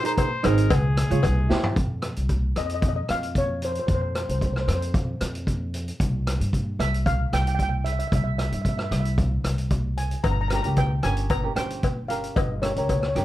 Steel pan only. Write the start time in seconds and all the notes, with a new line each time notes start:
2.58 D#5
2.66 D#5
2.74 D#5
2.82 D#5
2.89 D#5
2.96 D#5
3.10 F5
3.38 C#5
3.65 C5
3.72 C5
3.80 C5
3.87 C5
3.94 C5
4.01 C5
4.15 C5
4.22 C5
4.31 C5
4.39 C5
4.46 C5
4.53 C5
4.61 C5
4.67 C5
4.75 C5
6.80 E5
7.06 F5
7.34 G5
7.41 G5
7.48 G5
7.55 G5
7.63 G5
7.69 G5
7.84 E5
7.93 E5
7.99 E5
8.07 E5
8.15 E5
8.24 E5
8.38 E5
8.46 E5
8.54 E5
8.62 E5
8.69 E5
8.78 E5
8.84 E5
8.92 E5
9.00 E5
9.98 G#5
10.24 A#5
10.31 A#5
10.41 A#5
10.48 A#5
10.56 A#5
10.63 A#5
10.78 G5
11.03 G#5
11.30 A#5
11.56 G5
12.08 F5
12.36 D#5
12.62 C#5
12.70 C#5
12.78 C#5
12.85 C#5
12.92 C#5
13.00 C#5
13.08 C#5
13.15 C#5